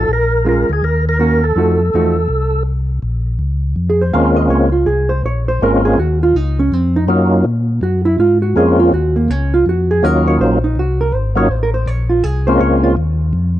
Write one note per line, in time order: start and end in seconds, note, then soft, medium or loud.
0.00 0.12 A4 medium
0.08 0.65 A#1 medium
0.13 0.47 A#4 medium
0.45 0.66 G#3 medium
0.45 0.67 C#4 medium
0.45 0.67 F4 medium
0.45 0.71 A#4 medium
0.69 0.82 D2 medium
0.69 0.85 G#4 medium
0.83 1.53 D#2 medium
0.83 1.05 A#4 medium
1.09 1.45 A#4 medium
1.19 1.40 D#3 medium
1.19 1.41 A#3 medium
1.19 1.41 C#4 medium
1.19 1.41 F#4 medium
1.44 2.63 A4 medium
1.56 1.90 F2 medium
1.56 1.77 F3 soft
1.56 1.78 A3 soft
1.56 1.78 D#4 medium
1.56 1.78 F#4 medium
1.94 2.28 E2 medium
1.94 2.15 F3 medium
1.94 2.15 A3 medium
1.94 2.15 D#4 medium
1.94 2.15 F#4 medium
2.29 2.99 C2 medium
3.02 3.39 A#1 medium
3.39 3.75 C#2 medium
3.76 4.12 F2 medium
3.90 4.01 G#4 medium
4.01 4.13 C5 medium
4.13 4.49 D#2 medium
4.13 4.69 G#3 medium
4.13 4.70 A#3 medium
4.13 4.70 C4 medium
4.13 4.70 C#4 medium
4.13 4.70 F4 medium
4.13 4.36 F5 medium
4.36 4.50 D#5 medium
4.49 4.85 C#2 medium
4.49 4.73 C#5 medium
4.72 4.86 F4 medium
4.86 5.23 C2 medium
4.86 5.10 G#4 medium
5.09 5.23 C5 medium
5.23 5.59 A#1 medium
5.23 5.48 C#5 medium
5.48 5.61 C5 medium
5.61 5.97 G#1 medium
5.61 5.98 G#3 medium
5.61 5.99 A#3 medium
5.61 5.99 C4 medium
5.61 5.99 C#4 medium
5.61 5.99 F4 medium
5.61 5.85 A#4 medium
5.85 5.98 G#4 medium
5.98 6.34 D#2 medium
5.98 6.21 F#4 medium
6.23 6.36 F4 medium
6.35 6.70 C#2 medium
6.35 6.58 D#4 medium
6.59 6.73 C#4 medium
6.72 7.08 F2 medium
6.72 6.95 C4 medium
6.96 7.04 D#4 medium
7.07 7.43 F#2 medium
7.07 7.45 F#3 medium
7.07 7.45 A#3 soft
7.07 7.45 C#4 medium
7.07 7.45 D#4 medium
7.07 7.46 F4 medium
7.44 7.80 A#2 medium
7.81 8.17 F#2 medium
7.81 8.05 F#4 medium
8.05 8.18 E4 medium
8.19 8.54 G#2 medium
8.19 8.42 F4 medium
8.42 8.55 F#4 medium
8.56 8.91 F2 medium
8.56 8.92 G#3 medium
8.56 8.93 A#3 medium
8.56 8.93 C4 medium
8.56 8.93 C#4 medium
8.56 8.93 F4 medium
8.56 8.79 G#4 medium
8.79 8.92 F4 medium
8.93 9.28 D#2 medium
8.93 9.16 F#4 medium
9.16 9.30 A#3 medium
9.28 9.65 C#2 medium
9.28 9.53 C#4 medium
9.54 9.66 F4 medium
9.66 10.02 F2 medium
9.66 9.90 F#4 medium
9.91 10.04 G#4 medium
10.03 10.39 D#2 medium
10.03 10.58 F#3 medium
10.03 10.59 A#3 soft
10.03 10.59 C#4 medium
10.03 10.59 D#4 medium
10.03 10.59 F4 medium
10.03 10.27 A#4 medium
10.27 10.40 C#5 loud
10.39 10.75 A#1 medium
10.39 10.63 C5 medium
10.64 10.77 D#4 medium
10.75 11.12 C2 medium
10.75 11.01 F#4 medium
11.01 11.15 A#4 medium
11.12 11.49 G#1 medium
11.12 11.37 C5 medium
11.35 11.48 F#3 medium
11.35 11.48 A#3 medium
11.35 11.49 C#4 medium
11.35 11.49 D#4 medium
11.35 11.49 F4 medium
11.35 11.52 C#5 loud
11.49 11.85 A1 loud
11.49 11.62 C5 medium
11.63 11.74 A#4 medium
11.74 11.87 C5 medium
11.86 12.22 A#1 medium
11.86 12.10 C#5 medium
12.09 12.24 F4 medium
12.24 12.60 C2 medium
12.24 12.47 G#4 medium
12.47 12.95 G#3 medium
12.47 12.95 A#3 medium
12.47 12.95 C4 medium
12.47 12.96 C#4 medium
12.47 12.96 F4 medium
12.47 12.60 C5 medium
12.60 12.97 C#2 medium
12.60 12.83 C#5 loud
12.84 12.92 F4 medium
12.97 13.33 D#2 medium
13.33 13.60 F2 medium